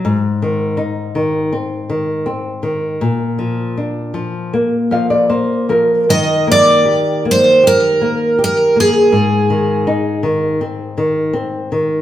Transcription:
<<
  \new Staff \with { instrumentName = "Twelve-string acoustic guitar" } { \time 4/4 \key aes \lydian \tempo 4 = 80 r1 | r1 | ees''8 d''4 c''8 bes'4 bes'8 aes'8~ | aes'4. r2 r8 | }
  \new Staff \with { instrumentName = "Nylon-string guitar" } { \time 4/4 \key aes \lydian << { r1 | r2 r8 f''16 d''16 c''8 bes'8 | r1 | r1 | } \\ { aes,8 ees8 ees'8 ees8 c'8 ees8 c'8 ees8 | bes,8 f8 d'8 f8 bes8 f8 bes8 f8 | ees8 bes8 g'8 bes8 g'8 bes8 g'8 bes8 | aes,8 ees8 ees'8 ees8 c'8 ees8 c'8 ees8 | } >> }
>>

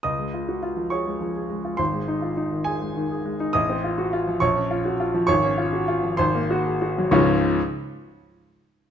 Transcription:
\new Staff \with { instrumentName = "Grand piano" } { \time 6/8 \key des \major \tempo 4. = 68 << { <ees'' ees'''>4. <des'' des'''>4. | <c'' c'''>4. <aes' aes''>4. | <ees'' ees'''>4. <des'' des'''>4. | <des'' des'''>4. <c'' c'''>4. |
<des, aes, f aes des' f' des'''>8 r2 r8 | } \\ { des,16 aes16 f'16 ges'16 f'16 f16 aes'16 aes16 f16 aes'16 aes16 f'16 | aes,,16 aes16 ees'16 f'16 ees'16 ees8 aes16 ees16 aes'16 aes16 ees'16 | a,,16 c'16 f'16 ges'16 f'16 f16 bes,,16 des'16 f'16 ges'16 f'16 f16 | aes,,16 des'16 f'16 ges'16 f'16 f16 aes,,16 bes16 ges'16 aes'16 ges'16 ges16 |
r2. | } >> }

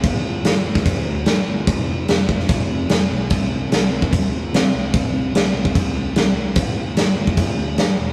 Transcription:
<<
  \new Staff \with { instrumentName = "Picked electric bass" } { \clef bass \time 4/4 \key g \major \tempo 4 = 147 g,,8 g,,8 g,,8 g,,8 g,,8 d,8 g,8 g,,8 | f,,8 f,,8 f,,8 f,,8 f,,8 f,,8 f,,8 b,,8 | c,8 c,8 c,8 c,8 c,8 g,,8 c8 c,8 | c,8 c,8 c,8 c,8 c,8 c,8 c,8 c,8 |
g,,8 g,,8 g,,8 g,,8 g,,8 d,8 g,8 e,,8 | }
  \new DrumStaff \with { instrumentName = "Drums" } \drummode { \time 4/4 <cymc bd>4 <cymc sn>8. <bd sn>16 <cymc bd>4 <cymc sn>4 | <cymc bd>4 <cymc sn>8 bd16 sn16 <cymc bd>4 <cymc sn>4 | <cymc bd>4 <cymc sn>8. bd16 <cymc bd>4 <cymc sn>4 | <cymc bd>4 <cymc sn>8. bd16 <cymc bd>4 <cymc sn>4 |
<cymc bd>4 <cymc sn>8. bd16 <cymc bd>4 <cymc sn>4 | }
>>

